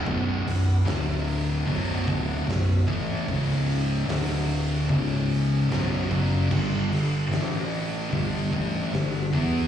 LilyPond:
<<
  \new Staff \with { instrumentName = "String machine" } { \time 4/4 \key b \minor \tempo 4 = 74 <b fis' b'>4 <d' a' e''>4 <b fis' b'>2 | <cis' gis' dis''>4 <d' a' e''>4 <cis' gis' dis''>4 <b fis' b'>4 | <g d' a'>4 <a e' b'>4 <g d' a'>2 | }
  \new Staff \with { instrumentName = "Distorted electric guitar" } { \clef bass \time 4/4 \key b \minor <b,, fis, b,>8 <b,, fis,>8 <d, a, d>4 <b,, fis, b,>8 <d, a, d>8 <b,, fis,>8 <a, e a>8 | <cis, gis, cis>4 <d, a, d>4 <cis, gis, cis>4 <b,, fis, b,>8 <fis, cis fis>8 | <g, d g>8 <g, d>8 <a, e a>4 <g, d g>8 <a, e a>8 <g, d>8 <e b e'>8 | }
  \new Staff \with { instrumentName = "Distorted electric guitar" } { \clef bass \time 4/4 \key b \minor <b,, fis, b,>8 <b,, fis,>8 <d, a, d>4 <b,, fis, b,>8 <d, a, d>8 <b,, fis,>8 <a, e a>8 | <cis, gis, cis>4 <d, a, d>4 <cis, gis, cis>4 <b,, fis, b,>8 <fis, cis fis>8 | <g, d g>8 <g, d>8 <a, e a>4 <g, d g>8 <a, e a>8 <g, d>8 <e b e'>8 | }
  \new Staff \with { instrumentName = "Fingered electric bass" } { \clef bass \time 4/4 \key b \minor b,,,8 b,,,8 d,,4 b,,,8 d,,8 b,,,8 a,,8 | cis,,4 d,,4 cis,,4 b,,,8 fis,,8 | g,,8 g,,8 a,,4 g,,8 a,,8 g,,8 e,8 | }
  \new DrumStaff \with { instrumentName = "Drums" } \drummode { \time 4/4 bd8 hho8 <hho sn>8 hho8 <hho bd>8 <hho bd>8 <hho sn>8 <hho bd>8 | <hho bd>8 hho8 <hho sn>8 hho8 <hho bd>8 hho8 <hho sn>16 sn16 <hho bd>8 | <cymc bd>8 hho8 <hho sn>8 hho8 <hho bd>8 <hho bd>8 <hho sn>16 sn16 <hho bd>8 | }
>>